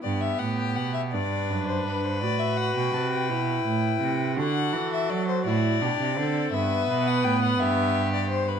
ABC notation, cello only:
X:1
M:12/8
L:1/16
Q:3/8=56
K:G
V:1 name="Cello" clef=bass
G,,2 A,,2 B,,2 G,,2 F,,2 G,,2 A,,3 B,, C,2 B,,2 A,,2 C,2 | D,2 E,2 F,2 A,,2 B,, C, D,2 G,,2 B,,2 A,,2 G,,6 |]